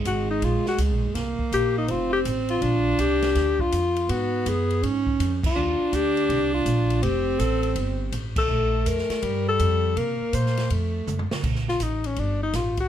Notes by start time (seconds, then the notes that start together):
Already playing: G#3
0.05 G#1 F#4, kick, hi-hat pedal, ride
0.31 D#4
0.41 A#1 F4, kick, ride
0.65 F#4, muted upright bass stroke, snare
0.78 C#2, kick, hi-hat pedal, ride
0.91 A#1
1.03 F#1
1.15 C2 A#3, kick, snare, ride
1.39 muted upright bass stroke, kick
1.52 A#1 G4, kick, hi-hat pedal, ride
1.78 D#4
1.88 F1 C4 F4, kick, ride
2.13 G4
2.25 A1, kick, hi-hat pedal, ride
2.49 F4, ride
2.62 A#1 D4, kick, ride
2.99 C2 G4, kick, hi-hat pedal, ride
3.22 snare, ride
3.35 D2, kick, snare, ride
3.59 F4, kick
3.72 F2, kick, hi-hat pedal, ride
3.96 ride
4.09 G#2 B3 F#4, kick, ride
4.46 F#2 G#4, kick, hi-hat pedal, ride
4.70 ride
4.82 G#2 C#4, kick, ride
5.07 kick
5.19 F2, kick, hi-hat pedal, ride
5.43 F4, kick, crash
5.55 D#2 D4
5.80 muted upright bass stroke
5.92 D2 G4, kick, hi-hat pedal, ride
6.17 ride
6.29 C2, kick, ride
6.54 F4
6.65 A#1, kick, hi-hat pedal, ride
6.90 ride
7.02 F1 C4 G4, kick, ride
7.39 A1 A4, kick, hi-hat pedal, ride
7.63 ride
7.75 G1, kick, ride
8.12 A1, kick, hi-hat pedal, ride
8.36 A4, kick, crash
8.48 A#1 A3
8.86 F2 A#4, kick, hi-hat pedal, ride
8.98 snare
9.09 muted upright bass stroke, snare, ride
9.22 G2 G3, kick, ride
9.48 A4
9.59 F2, kick, hi-hat pedal, ride
9.96 C3 A#3 A#4, kick, ride
10.20 muted upright bass stroke
10.33 A#2 C5, kick, hi-hat pedal, ride
10.46 snare
10.57 snare, ride
10.70 F2 A3, kick, ride
11.07 F#2, hi-hat pedal, mid tom
11.19 mid tom
11.31 muted upright bass stroke, snare
11.43 A#1, kick, crash
11.55 snare
11.68 F4, snare
11.80 A1 D#4, kick, hi-hat pedal, ride
12.04 C#4, ride
12.16 G1 D4, kick, ride
12.43 D#4
12.54 A1 F4, kick, snare, hi-hat pedal, ride
12.77 F#4, kick, ride